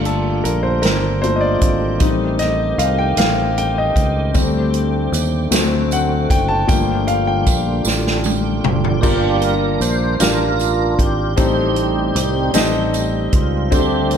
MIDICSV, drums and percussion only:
0, 0, Header, 1, 2, 480
1, 0, Start_track
1, 0, Key_signature, -2, "minor"
1, 0, Tempo, 780234
1, 1238, Time_signature, 6, 3, 24, 8
1, 8720, End_track
2, 0, Start_track
2, 0, Title_t, "Drums"
2, 32, Note_on_c, 9, 42, 49
2, 93, Note_off_c, 9, 42, 0
2, 277, Note_on_c, 9, 42, 65
2, 338, Note_off_c, 9, 42, 0
2, 509, Note_on_c, 9, 42, 78
2, 525, Note_on_c, 9, 38, 94
2, 571, Note_off_c, 9, 42, 0
2, 586, Note_off_c, 9, 38, 0
2, 760, Note_on_c, 9, 42, 45
2, 821, Note_off_c, 9, 42, 0
2, 994, Note_on_c, 9, 42, 66
2, 995, Note_on_c, 9, 36, 86
2, 1055, Note_off_c, 9, 42, 0
2, 1056, Note_off_c, 9, 36, 0
2, 1230, Note_on_c, 9, 42, 69
2, 1234, Note_on_c, 9, 36, 99
2, 1292, Note_off_c, 9, 42, 0
2, 1296, Note_off_c, 9, 36, 0
2, 1469, Note_on_c, 9, 42, 50
2, 1481, Note_on_c, 9, 38, 31
2, 1531, Note_off_c, 9, 42, 0
2, 1543, Note_off_c, 9, 38, 0
2, 1717, Note_on_c, 9, 42, 71
2, 1779, Note_off_c, 9, 42, 0
2, 1950, Note_on_c, 9, 42, 79
2, 1966, Note_on_c, 9, 38, 99
2, 2012, Note_off_c, 9, 42, 0
2, 2028, Note_off_c, 9, 38, 0
2, 2200, Note_on_c, 9, 42, 49
2, 2262, Note_off_c, 9, 42, 0
2, 2435, Note_on_c, 9, 36, 79
2, 2438, Note_on_c, 9, 42, 63
2, 2497, Note_off_c, 9, 36, 0
2, 2500, Note_off_c, 9, 42, 0
2, 2672, Note_on_c, 9, 54, 50
2, 2675, Note_on_c, 9, 36, 102
2, 2677, Note_on_c, 9, 42, 67
2, 2734, Note_off_c, 9, 54, 0
2, 2737, Note_off_c, 9, 36, 0
2, 2739, Note_off_c, 9, 42, 0
2, 2914, Note_on_c, 9, 42, 51
2, 2975, Note_off_c, 9, 42, 0
2, 3158, Note_on_c, 9, 54, 50
2, 3162, Note_on_c, 9, 42, 69
2, 3220, Note_off_c, 9, 54, 0
2, 3224, Note_off_c, 9, 42, 0
2, 3394, Note_on_c, 9, 42, 81
2, 3394, Note_on_c, 9, 54, 91
2, 3410, Note_on_c, 9, 38, 103
2, 3456, Note_off_c, 9, 42, 0
2, 3456, Note_off_c, 9, 54, 0
2, 3472, Note_off_c, 9, 38, 0
2, 3637, Note_on_c, 9, 54, 50
2, 3641, Note_on_c, 9, 42, 53
2, 3699, Note_off_c, 9, 54, 0
2, 3703, Note_off_c, 9, 42, 0
2, 3876, Note_on_c, 9, 36, 85
2, 3878, Note_on_c, 9, 42, 65
2, 3938, Note_off_c, 9, 36, 0
2, 3939, Note_off_c, 9, 42, 0
2, 4115, Note_on_c, 9, 36, 108
2, 4115, Note_on_c, 9, 42, 70
2, 4115, Note_on_c, 9, 54, 50
2, 4177, Note_off_c, 9, 36, 0
2, 4177, Note_off_c, 9, 42, 0
2, 4177, Note_off_c, 9, 54, 0
2, 4354, Note_on_c, 9, 42, 50
2, 4415, Note_off_c, 9, 42, 0
2, 4593, Note_on_c, 9, 42, 72
2, 4593, Note_on_c, 9, 54, 51
2, 4594, Note_on_c, 9, 36, 84
2, 4654, Note_off_c, 9, 42, 0
2, 4655, Note_off_c, 9, 36, 0
2, 4655, Note_off_c, 9, 54, 0
2, 4827, Note_on_c, 9, 54, 92
2, 4843, Note_on_c, 9, 38, 56
2, 4889, Note_off_c, 9, 54, 0
2, 4905, Note_off_c, 9, 38, 0
2, 4965, Note_on_c, 9, 38, 58
2, 5027, Note_off_c, 9, 38, 0
2, 5068, Note_on_c, 9, 54, 51
2, 5079, Note_on_c, 9, 48, 70
2, 5130, Note_off_c, 9, 54, 0
2, 5140, Note_off_c, 9, 48, 0
2, 5317, Note_on_c, 9, 45, 93
2, 5378, Note_off_c, 9, 45, 0
2, 5441, Note_on_c, 9, 43, 82
2, 5502, Note_off_c, 9, 43, 0
2, 5555, Note_on_c, 9, 54, 49
2, 5556, Note_on_c, 9, 36, 89
2, 5557, Note_on_c, 9, 49, 74
2, 5617, Note_off_c, 9, 54, 0
2, 5618, Note_off_c, 9, 36, 0
2, 5618, Note_off_c, 9, 49, 0
2, 5793, Note_on_c, 9, 42, 48
2, 5854, Note_off_c, 9, 42, 0
2, 6036, Note_on_c, 9, 54, 46
2, 6040, Note_on_c, 9, 42, 62
2, 6098, Note_off_c, 9, 54, 0
2, 6102, Note_off_c, 9, 42, 0
2, 6274, Note_on_c, 9, 42, 83
2, 6279, Note_on_c, 9, 54, 79
2, 6290, Note_on_c, 9, 38, 96
2, 6336, Note_off_c, 9, 42, 0
2, 6340, Note_off_c, 9, 54, 0
2, 6352, Note_off_c, 9, 38, 0
2, 6517, Note_on_c, 9, 54, 45
2, 6526, Note_on_c, 9, 42, 46
2, 6579, Note_off_c, 9, 54, 0
2, 6587, Note_off_c, 9, 42, 0
2, 6760, Note_on_c, 9, 36, 76
2, 6762, Note_on_c, 9, 42, 62
2, 6821, Note_off_c, 9, 36, 0
2, 6823, Note_off_c, 9, 42, 0
2, 6997, Note_on_c, 9, 42, 71
2, 7000, Note_on_c, 9, 36, 94
2, 7001, Note_on_c, 9, 54, 44
2, 7058, Note_off_c, 9, 42, 0
2, 7061, Note_off_c, 9, 36, 0
2, 7062, Note_off_c, 9, 54, 0
2, 7236, Note_on_c, 9, 42, 51
2, 7298, Note_off_c, 9, 42, 0
2, 7480, Note_on_c, 9, 42, 71
2, 7480, Note_on_c, 9, 54, 48
2, 7541, Note_off_c, 9, 42, 0
2, 7542, Note_off_c, 9, 54, 0
2, 7713, Note_on_c, 9, 42, 81
2, 7718, Note_on_c, 9, 54, 86
2, 7729, Note_on_c, 9, 38, 93
2, 7774, Note_off_c, 9, 42, 0
2, 7780, Note_off_c, 9, 54, 0
2, 7790, Note_off_c, 9, 38, 0
2, 7960, Note_on_c, 9, 54, 47
2, 7961, Note_on_c, 9, 42, 48
2, 8021, Note_off_c, 9, 54, 0
2, 8023, Note_off_c, 9, 42, 0
2, 8198, Note_on_c, 9, 42, 66
2, 8200, Note_on_c, 9, 36, 82
2, 8260, Note_off_c, 9, 42, 0
2, 8262, Note_off_c, 9, 36, 0
2, 8440, Note_on_c, 9, 42, 68
2, 8441, Note_on_c, 9, 36, 92
2, 8441, Note_on_c, 9, 54, 50
2, 8501, Note_off_c, 9, 42, 0
2, 8502, Note_off_c, 9, 54, 0
2, 8503, Note_off_c, 9, 36, 0
2, 8679, Note_on_c, 9, 42, 47
2, 8720, Note_off_c, 9, 42, 0
2, 8720, End_track
0, 0, End_of_file